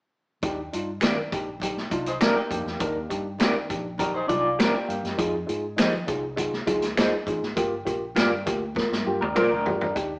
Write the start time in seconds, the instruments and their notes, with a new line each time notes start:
0.42 fingered electric bass D#2, upright piano D4 D#4 G4, kick, closed hi-hat, muted conga
0.56 muted conga
0.73 fingered electric bass G2, upright piano D4 D#4 F4, closed hi-hat
1.00 fingered electric bass D#3, upright piano D4 D#4 A#4, clean electric guitar G4 A#4 D5, finger snap, snare, closed hi-hat, muted conga, high conga
1.16 low conga
1.32 fingered electric bass A#1, upright piano D4 D#4 G4, kick, closed hi-hat
1.60 upright piano D4 D#4 G4, kick, closed hi-hat, muted conga, high conga, low conga
1.77 snare, muted conga
1.90 fingered electric bass C2, upright piano D4 D#4 F4, kick, closed hi-hat, high conga
2.06 clean electric guitar D#4 C5, closed hi-hat
2.20 fingered electric bass D2, upright piano D4 D#4 A#4, clean electric guitar D4 G4 A#4 D5, finger snap, snare, closed hi-hat, muted conga, high conga
2.36 clean electric guitar A#3 G4, muted conga
2.50 fingered electric bass F2, upright piano D4 D#4 G4, kick, closed hi-hat
2.66 fingered electric bass E2, snare
2.80 fingered electric bass D#2, upright piano D4 D#4 A#4, kick, closed hi-hat, muted conga
2.95 muted conga
3.10 fingered electric bass G2, upright piano D4 D#4 G4, kick, closed hi-hat
3.39 fingered electric bass D#3, upright piano D4 D#4 G4, clean electric guitar G4 A#4 D5, finger snap, snare, closed hi-hat, muted conga, high conga
3.54 muted conga, low conga
3.69 fingered electric bass A#1, upright piano D4 D#4 G4, kick, closed hi-hat
3.98 upright piano D4 D#4 G4, clean electric guitar D4 A#4, kick, closed hi-hat, high conga, low conga
4.14 clean electric guitar D#4 C5, muted conga
4.27 fingered electric bass C2, upright piano D4 D#4 F4, clean electric guitar F4 D5, kick, closed hi-hat, high conga
4.59 fingered electric bass D2, clean electric guitar D4 G4 A#4 D5, upright piano D#4 C5, finger snap, snare, closed hi-hat, muted conga, high conga
4.74 clean electric guitar A#3 G4, upright piano F4 D5, muted conga
4.88 fingered electric bass G2, upright piano F5, closed hi-hat
5.03 fingered electric bass F#2, upright piano G4 D#5, snare, closed hi-hat
5.18 fingered electric bass F2, upright piano D#4 F4 G#4, kick, closed hi-hat, muted conga
5.46 fingered electric bass G#2, upright piano D#4 F4 G#4, closed hi-hat
5.76 fingered electric bass F3, upright piano D#4 F4 G4, clean electric guitar G#4 C5 D#5, finger snap, snare, closed hi-hat, high conga
5.93 low conga
6.07 fingered electric bass C2, upright piano D#4 F4 G#4, kick, closed hi-hat
6.36 upright piano D#4 F4 G#4, kick, closed hi-hat, muted conga, high conga, low conga
6.53 snare, muted conga
6.67 fingered electric bass D2, upright piano D#4 F4 G#4, kick, closed hi-hat, high conga
6.82 snare, closed hi-hat
6.97 fingered electric bass D#2, upright piano D#4 F4 G#4, clean electric guitar G#4 C5 D#5, finger snap, snare, closed hi-hat, high conga
7.27 fingered electric bass A1, upright piano D#4 F4 G#4, kick, closed hi-hat
7.43 fingered electric bass G#1, snare
7.56 fingered electric bass G1, upright piano A#3 F4 G4, kick, closed hi-hat, muted conga
7.71 muted conga
7.85 fingered electric bass A#1, upright piano A#3 F4 G4, kick, closed hi-hat
8.15 fingered electric bass G2, upright piano A#3 F4 G4, clean electric guitar F4 A#4 D5, finger snap, snare, closed hi-hat, muted conga, high conga
8.30 low conga
8.45 fingered electric bass D2, upright piano A#3 F4 G4, kick, closed hi-hat
8.75 upright piano A#3 F4 A#4, kick, snare, high conga, low conga
8.92 fingered electric bass G2, snare
9.05 fingered electric bass G2, upright piano A#3 F4 G4, high conga
9.21 fingered electric bass D#2, clean electric guitar D4 A#4, high tom
9.35 upright piano A#3 F4 A#4, clean electric guitar F4 A#4 C5 D5, finger snap, muted fingered electric bass stroke, mid tom, muted conga, high conga
9.51 fingered electric bass D2, clean electric guitar D4 A#4
9.64 fingered electric bass G2, upright piano A#3 F4 G4, floor tom
9.81 floor tom
9.95 fingered electric bass D#2, upright piano D4 D#4 G4, kick, closed hi-hat